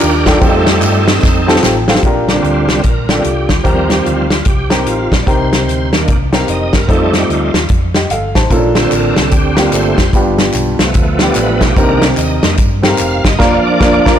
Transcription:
Already playing: D4 D#4 F4 G4 A#4
0.01 D#2, clap, ride, tambourine
0.26 D4 D#4 F4 G4 A4, kick, snare, ride, tambourine
0.40 F2 G3 A3 C4 D#4 F4 G4 G#4 A4, kick, ride, tambourine
0.44 C4 D#4 A4
0.67 snare, ride, tambourine
0.82 G2, clap, ride, tambourine
1.08 snare, ride, tambourine
1.23 F2, kick, snare, tambourine
1.47 C4 D#4 F4 G4 A4 A5, snare, tambourine
1.56 snare
1.63 A1 G5, snare, clap, tambourine
1.88 C4 D#4 F4 G4 A4 F5, snare, tambourine
1.95 snare
2.03 A#1 A#2 D4 F4 G4 A#4, kick, closed hi-hat
2.28 D3 G3 C4 D4, snare, closed hi-hat
2.36 F4
2.44 D2, closed hi-hat
2.69 snare, closed hi-hat
2.83 A#1 A#4, kick, closed hi-hat
3.09 D3 G3 C4 D4 F4 G4 A4, snare, closed hi-hat
3.23 C2 G4, closed hi-hat
3.49 D2, kick, snare, closed hi-hat
3.63 D#2 D#3 F3 G3 C4 D#4 G4 A#4, kick, closed hi-hat
3.90 G4, snare, closed hi-hat
4.05 D2 F4, closed hi-hat
4.30 snare, closed hi-hat
4.45 C2 G4, kick, closed hi-hat
4.70 C4 D#4 G4 A#4, snare, closed hi-hat
4.86 A1 F4, closed hi-hat
5.12 A#1, kick, snare, closed hi-hat
5.23 C4 D#4 D5
5.27 C2 C3 G4 A#4 C5, kick, closed hi-hat
5.53 snare, closed hi-hat
5.68 D2, closed hi-hat
5.93 D#2 D#3 A#3 D4, snare, closed hi-hat
6.08 C2, kick, closed hi-hat
6.32 C4 D#4 G4 A#4 F5, snare, closed hi-hat
6.48 F1 D#5, closed hi-hat
6.73 G1 A#4, kick, snare, closed hi-hat
6.88 F2 G3 A3 C4 D#4 F4 A4, kick, closed hi-hat
7.13 G4, snare, closed hi-hat
7.30 D2 F4, closed hi-hat
7.54 D#2, snare, closed hi-hat
7.68 F2, kick, closed hi-hat
7.95 G4 D#5, snare, closed hi-hat
8.10 G1 A4 F5, closed hi-hat
8.35 A1 D#4 C5 A5, kick, snare, closed hi-hat
8.50 A#1 A#2 A#3 C#4 F4 A4, kick, closed hi-hat, tambourine
8.56 D4
8.75 D3 C4 A4 C5, snare, closed hi-hat, tambourine
8.91 A1 A#4, clap, closed hi-hat, tambourine
9.16 C2 A4, snare, closed hi-hat, tambourine
9.31 D2 G4, kick, closed hi-hat, tambourine
9.56 A#3 C4 F4 G4, snare, closed hi-hat, tambourine
9.62 D4
9.72 G1 D3 A3 C4 C5, clap, closed hi-hat, tambourine
9.98 F1, kick, snare, closed hi-hat, tambourine
10.13 G1 G2 B3 D4 F4 G4, kick, closed hi-hat, tambourine
10.38 snare, closed hi-hat, tambourine
10.54 B1, clap, closed hi-hat, tambourine
10.79 C2 F3 A3 B3, snare, closed hi-hat, tambourine
10.94 D2, kick, closed hi-hat, tambourine
11.19 B3 D4 F4 G4 D5, snare, closed hi-hat, tambourine
11.35 A1 B4, clap, closed hi-hat, tambourine
11.61 B1 G4, kick, snare, closed hi-hat, tambourine
11.76 C2 C3 D#3 A#3 C4 D4 D#4 G4 A#4, kick, closed hi-hat, tambourine
12.02 D5, snare, closed hi-hat, tambourine
12.17 D#2 D#5, clap, closed hi-hat, tambourine
12.43 F2 D#3 A#3 D4, snare, closed hi-hat, tambourine
12.57 G2, kick, closed hi-hat, tambourine
12.82 C4 D#4 G4 A4 F5, snare, closed hi-hat, tambourine
12.89 A#4
12.98 F1, clap, closed hi-hat, tambourine
13.24 G1 D#5, kick, snare, closed hi-hat, tambourine
13.39 F1 F3 A#3 D4 F4 A#4 D5, kick, snare, crash
13.57 F5
13.67 D5
13.80 F1 A#3 D4 F4 A#4, kick, snare
14.05 F1 A#3 D4 F4 A#4, kick, snare

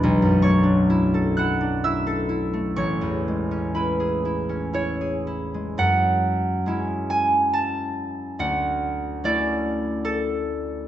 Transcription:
Already playing: F#3 D4 F#4 B4 C#5 D5 F#5 B5 D6 F#6
0.03 B1
0.22 F#2
0.42 A3 C#5 C#6
0.63 D4
0.90 E4
1.14 A4
1.37 E4 F#5 F#6
1.61 D4
1.84 E4 E5 E6
2.07 A4
2.29 E4
2.53 A3
2.76 A1 C#5 C#6
3.01 E2
3.28 G#3
3.51 C#4
3.75 E4 B4 B5
4.00 G#4
4.25 E4
4.49 C#4
4.73 E4 C#5
5.01 G#4
5.27 E4
5.54 G#3
5.78 F#2 F#5
6.66 G#3 C#4 E4
7.10 G#5
7.53 A5
8.39 D2 F#5
9.24 A3 C#4 E4 D5
10.05 A4

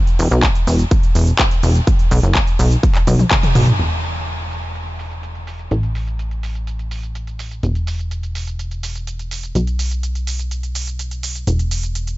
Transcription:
0.07 closed hi-hat, shaker
0.19 E1, open hi-hat, shaker
0.31 B1, closed hi-hat, shaker
0.43 kick, clap, closed hi-hat, shaker
0.55 closed hi-hat, shaker
0.67 E1, open hi-hat, shaker
0.79 closed hi-hat, shaker
0.91 kick, closed hi-hat, shaker
1.03 closed hi-hat, shaker
1.15 E1, open hi-hat, shaker
1.27 closed hi-hat, shaker
1.39 kick, clap, closed hi-hat, shaker
1.51 closed hi-hat, shaker
1.63 E1, open hi-hat, shaker
1.75 closed hi-hat, shaker
1.87 kick, closed hi-hat, shaker
1.99 closed hi-hat, shaker
2.11 B1, open hi-hat, shaker
2.23 F#1, closed hi-hat, shaker
2.35 kick, clap, closed hi-hat, shaker
2.47 closed hi-hat, shaker
2.59 B1, open hi-hat, shaker
2.71 closed hi-hat, shaker
2.83 kick, closed hi-hat, shaker
2.95 clap, closed hi-hat, shaker
3.07 B1, open hi-hat, high tom, shaker
3.19 closed hi-hat, high tom, shaker
3.31 kick, clap, closed hi-hat, mid tom, shaker
3.43 closed hi-hat, mid tom, shaker
3.55 B1, mid tom, open hi-hat, shaker
3.67 mid tom, shaker
3.79 E1, closed hi-hat, shaker
3.91 shaker
4.03 open hi-hat, shaker
4.15 closed hi-hat, shaker
4.27 closed hi-hat, shaker
4.39 closed hi-hat, shaker
4.51 open hi-hat, shaker
4.63 closed hi-hat, shaker
4.75 closed hi-hat, shaker
4.87 closed hi-hat, shaker
4.99 open hi-hat, shaker
5.11 closed hi-hat, shaker
5.23 closed hi-hat, shaker
5.35 closed hi-hat, shaker
5.47 open hi-hat, shaker
5.59 closed hi-hat, shaker
5.71 A1, closed hi-hat, shaker
5.83 closed hi-hat, shaker
5.95 open hi-hat, shaker
6.07 closed hi-hat, shaker
6.19 closed hi-hat, shaker
6.31 closed hi-hat, shaker
6.43 open hi-hat, shaker
6.55 closed hi-hat, shaker
6.67 closed hi-hat, shaker
6.79 closed hi-hat, shaker
6.91 open hi-hat, shaker
7.03 closed hi-hat, shaker
7.15 closed hi-hat, shaker
7.27 closed hi-hat, shaker
7.39 open hi-hat, shaker
7.51 closed hi-hat, shaker
7.63 E1, closed hi-hat, shaker
7.75 closed hi-hat, shaker
7.87 open hi-hat, shaker
7.99 closed hi-hat, shaker
8.11 closed hi-hat, shaker
8.23 closed hi-hat, shaker
8.35 open hi-hat, shaker
8.47 closed hi-hat, shaker
8.59 closed hi-hat, shaker
8.71 closed hi-hat, shaker
8.83 open hi-hat, shaker
8.95 closed hi-hat, shaker
9.07 closed hi-hat, shaker
9.19 closed hi-hat, shaker
9.31 open hi-hat, shaker
9.43 closed hi-hat, shaker
9.55 B1, closed hi-hat, shaker
9.67 closed hi-hat, shaker
9.79 open hi-hat, shaker
9.91 closed hi-hat, shaker
10.03 closed hi-hat, shaker
10.15 closed hi-hat, shaker
10.27 open hi-hat, shaker
10.39 closed hi-hat, shaker
10.51 closed hi-hat, shaker
10.63 closed hi-hat, shaker
10.75 open hi-hat, shaker
10.87 closed hi-hat, shaker
10.99 closed hi-hat, shaker
11.11 closed hi-hat, shaker
11.23 open hi-hat, shaker
11.35 closed hi-hat, shaker
11.47 E1, closed hi-hat, shaker
11.59 closed hi-hat, shaker
11.71 open hi-hat, shaker
11.83 closed hi-hat, shaker
11.95 closed hi-hat, shaker
12.07 closed hi-hat, shaker

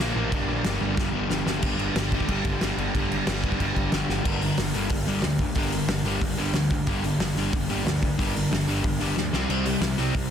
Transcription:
Already playing: A#1
0.00 A#2 D3 F3 A#3 D4
0.15 A1 A#2 F3 A#3
0.32 G1 G2 D3 G3 A#3 D4, kick, crash
0.47 A#1 G2 D3 G3
0.64 G1 G2 D3 G3, snare, crash
0.81 G1 G2 D3 G3
0.97 G1 G2 D3 G3, kick, snare
1.12 G1 G2 D3 G3
1.28 G1 G2 D3 G3, snare
1.45 G1 G2 D3 G3 A#3 D4, snare
1.62 G1 G2 D3 G3, kick, crash
1.78 G1, crash
1.95 G1 G2 D3 G3, snare, crash
2.12 G2 D3 G3, kick, crash
2.20 kick
2.28 G1 G2 D3 G3, kick, crash
2.44 G1, kick, crash
2.61 G1 G2 D3 G3, snare, crash
2.77 G1 G2 D3 G3, crash
2.94 G1 G2 D3 G3, kick, crash
3.10 G1, crash
3.27 G1 G2 D3 G3, snare, crash
3.44 G2 D3 G3, kick, crash
3.52 kick
3.60 G1 G2 D3 G3, kick, crash
3.76 G1, kick, crash
3.92 G1 G2 D3 G3, snare, crash
4.09 G1 G2 D3 G3, snare
4.25 G1 G2 D3 G3 A#3 D4 A#4, kick, crash
4.42 G2 D3, open hi-hat
4.58 G1 G2 D3, snare, open hi-hat
4.74 G1 G2 D3 G3, open hi-hat
4.90 G1 G2 D3, kick, open hi-hat
5.06 G1 G2 D3 G3, open hi-hat
5.22 D2 G2 D3, snare, open hi-hat
5.38 G2 D3, kick, open hi-hat
5.55 G1 G2 D3 G3 A#3 D4, kick, open hi-hat
5.59 A#4
5.72 G2 D3, open hi-hat
5.87 G1 G2 D3, snare, open hi-hat
6.03 G1 G2 D3 G3, open hi-hat
6.21 G1 G2 D3, kick, open hi-hat
6.36 G1 G2 D3 G3, open hi-hat
6.53 D2 G2 D3, snare, open hi-hat
6.70 G2 D3, kick, open hi-hat
6.87 G1 G2 D3 G3 A#3 D4 A#4, kick, open hi-hat
7.04 G2 D3, open hi-hat
7.18 G1 G2 D3, snare, open hi-hat
7.34 G1 G2 D3, open hi-hat
7.38 G3
7.53 G1 G2 D3, kick, open hi-hat
7.68 G1 G2 D3 G3, open hi-hat
7.84 D2 G2 D3, snare, open hi-hat
8.02 G2 D3, kick, open hi-hat
8.18 G1 G2 D3 G3 A#3 D4 A#4, kick, open hi-hat
8.34 G2 D3, open hi-hat
8.51 G1 G2 D3, snare, open hi-hat
8.67 G1 G2 D3 G3, open hi-hat
8.84 G1 G2 D3, kick, open hi-hat
9.00 G1 G2 D3 G3, open hi-hat
9.16 D2 G2 D3, snare
9.33 C2 C3 G3 C4 E4 G4, snare
9.49 C2 C3 G3 C4, crash
9.66 C3 G3, open hi-hat
9.81 C2 C3 G3, snare, open hi-hat
9.97 C2 C3 G3 C4, open hi-hat
10.14 C2 C3 G3, kick, open hi-hat

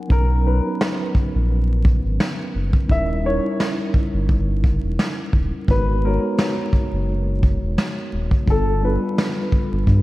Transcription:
Already playing: F#5 G#5
0.08 B1 F#3 B3 C#4 D#4 A#4, kick
0.43 F#3 B3 C#4 D#4 B4
0.81 snare
1.15 kick
1.35 A#1
1.85 kick
2.04 G#1
2.20 snare
2.54 F#1
2.73 kick
2.88 D#1 G3 C#4 D#4 E4 A#4 E5, kick
3.23 G3 C#4 D#4 E4 A#4 C#5
3.60 snare
3.94 kick
4.13 G1
4.29 kick
4.64 kick
4.83 E1
4.99 snare
5.33 D#1, kick
5.67 G#1 G#3 B3 D#4 F#4 A#4 B4, kick
6.04 G#3 B3 D#4 F#4 A#4 C#5
6.39 snare
6.73 kick
6.92 F#1
7.43 kick
7.62 E1
7.78 snare
8.13 D#1
8.31 kick
8.45 G1 G3 B3 D4 F4 A4, kick
8.50 A4
8.82 G3 B3 D4 F4 B4
9.18 snare
9.52 kick
9.72 G1
9.87 G2, kick

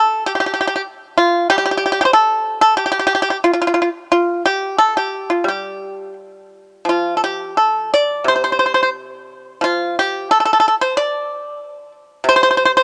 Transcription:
Already playing: F3 A4
0.26 G4
0.35 G4
0.40 G4
0.46 G4
0.54 G4
0.61 G4
0.67 G4
0.76 G4
1.18 F4
1.50 G3 G4
1.58 G4
1.66 G4
1.71 G4
1.77 G4
1.86 G4
1.92 G4
2.01 G4
2.05 C5
2.13 A4
2.61 A4
2.77 G4
2.86 G4
2.92 G4
2.99 G4
3.07 G4
3.15 G4
3.22 G4
3.30 G4
3.44 F4
3.53 F4
3.62 F4
3.67 F4
3.74 F4
3.82 F4
4.12 F4
4.46 G4
4.78 A4
4.97 G4
5.30 F4
5.44 G3
5.48 G4
6.85 F3
6.89 F4
7.17 A4
7.24 G4
7.57 A4
7.94 D5
8.24 C3 C5
8.36 C5
8.44 C5
8.52 C5
8.59 C5
8.66 C5
8.74 C5
8.83 C5
9.61 F3 F4
9.99 G4
10.31 A4
10.40 A4
10.45 A4
10.53 A4
10.60 A4
10.68 A4
10.81 C5
10.97 D5
12.24 C3
12.29 C5
12.36 C5
12.43 C5
12.51 C5
12.57 C5
12.65 C5
12.77 C5

